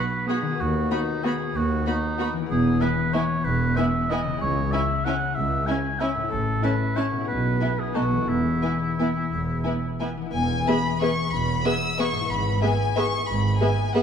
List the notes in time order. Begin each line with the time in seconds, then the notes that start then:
Already playing: B2 B3 F#4 B4
0.27 B3 F#4 G#4 B5
0.42 D#3
0.46 B3
0.51 F#4
0.55 B4
0.59 D#2 F#4
0.91 B3 D#4 F#4 B5
1.24 B3 F#4 G#4 B5
1.55 D#2 F#4
1.87 B3 D#4 F#4 B5
2.19 B3 F#4 B5
2.33 E3
2.37 B3
2.42 E4
2.46 G#4
2.51 E1 E2 G#4
2.81 B3 E4 B4 G#5
3.13 B3 E4 C#5 G#5
3.45 E1 E2 B4
3.76 B3 E4 E5 G#5
4.10 B3 E4 D#5 G#5
4.24 C#3
4.29 C#4
4.33 E4 G#4
4.41 C#2 C#5
4.71 C#4 E4 E5 G#5
5.05 C#4 E4 F#5 G#5
5.35 C#2 E5
5.66 C#4 E4 G#5
6.00 C#4 E4 E5 G#5
6.15 A2
6.19 C#4
6.24 E4
6.28 A4
6.33 A1 A2
6.63 C#4 E4 B4 A5
6.96 C#4 E4 C#5 A5
7.11 B2
7.15 B3
7.20 E4
7.24 G#4 B4
7.29 B1 B2
7.60 B3 E4 G#5
7.79 B2 G#4
7.83 B3
7.88 D#4
7.92 B1 D#4 F#4 A4 A5
7.96 B2 B3
8.12 E3
8.16 B3
8.21 E4
8.25 E1 E4 G#4
8.30 E2
8.63 B3 E4 G#5
8.99 B3 E4 G#5
9.33 E1 E2
9.64 B3 E4 G#5
10.00 B3 E4 G#5
10.17 E3
10.22 B3
10.26 E4
10.31 E1 B4 G#5
10.36 E2
10.67 B3 G#4 B4 E5 B5
11.01 B3 G#4 B4 E5 C#6
11.32 E1 E2 B5
11.63 B3 G#4 B4 E5 E6
11.97 B3 G#4 B4 E5 C#6
12.12 G#2
12.17 B3
12.21 E4
12.25 G#1 B4
12.30 G#2 B5
12.61 B3 G#4 B4 E5 G#5
12.95 B3 G#4 B4 E5 C#6
13.28 G#1 G#2 B5
13.61 B3 G#4 B4 E5 G#5
13.93 B3 G#4 B4 E5 F#5